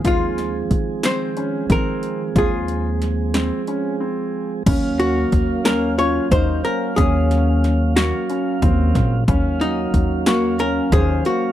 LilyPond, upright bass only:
\new Staff \with { instrumentName = "Upright bass" } { \clef bass \time 7/8 \key ees \dorian \tempo 4 = 91 ees,4 ees4. ees4 | ees,2 r4. | ees,4 ees,4. ees,8 r8 | ees,2 r8 ees,8 bes,,8 |
ees,4 ees,4. ees,8 r8 | }